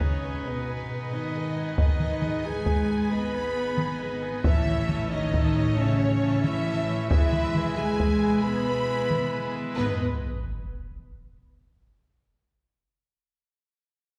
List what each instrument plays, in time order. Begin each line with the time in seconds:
Already playing: double bass section G#1, cello section C#3, pipe organ B3 D#4 B4 G#5, french horn section C#4, violin section C#5, impact
0.01 viola section G#4 D#5, taiko
0.23 viola section B4 G#5
0.44 cello section B2, french horn section B3, viola section G#4 D#5, violin section B4
0.66 viola section B4 G#5
0.89 viola section G#4 D#5
1.11 cello section D#3, french horn section D#4, viola section B4 G#5, violin section D#5
1.34 viola section G#4 D#5
1.55 viola section B4 G#5
1.76 cello section D#3, french horn section D#4, viola section G#4 D#5, violin section D#5, taiko
2.00 viola section B4 G#5, taiko mid
2.22 viola section G#4 D#5, taiko mid
2.43 cello section G#3, french horn section G#4, viola section B4 G#5, violin section G#5
2.66 viola section G#4 D#5, taiko
2.88 viola section B4 G#5
3.11 cello section B3, viola section G#4 D#5, french horn section B4, violin section B5
3.33 viola section B4 G#5
3.56 viola section G#4 D#5
3.78 viola section B4 G#5, taiko mid
4.01 viola section G#4 D#5
4.22 viola section B4 G#5
4.43 double bass section A1, cello section E3, pipe organ A3 C#4 C#5, french horn section E4, violin section E5, viola section E5 A5, taiko
4.67 viola section C#5, taiko mid
4.89 viola section E5 A5, taiko mid
5.10 cello section D#3, french horn section D#4, viola section C#5, violin section D#5
5.34 viola section E5 A5, taiko
5.56 viola section C#5
5.77 cello section C#3, french horn section C#4, violin section C#5, viola section E5 A5
6.00 viola section C#5
6.21 viola section E5 A5
6.43 cello section E3, french horn section E4, viola section C#5, violin section E5, taiko mid
6.66 viola section E5 A5
6.88 viola section C#5
7.10 double bass section E1, cello section E3, pipe organ G#3 E4 B4, french horn section E4, viola section G#4 G#5, violin section E5, taiko
7.33 viola section B4 B5, taiko mid
7.55 viola section G#4 G#5, taiko mid
7.76 cello section G#3, french horn section G#4, viola section B4 B5, violin section G#5
8.00 viola section G#4 G#5, taiko
8.23 viola section B4 B5
8.43 cello section B3, viola section G#4 G#5, french horn section B4, violin section B5
8.68 viola section B4 B5
8.90 viola section G#4 G#5
9.10 viola section B4 B5, taiko mid
9.33 viola section G#4 G#5
9.55 viola section B4 B5
9.76 double bass section G#1, pipe organ G#3 G#4 B4 D#5, viola section B3 B4, cello section B3, violin section B4, french horn section B4, sub drop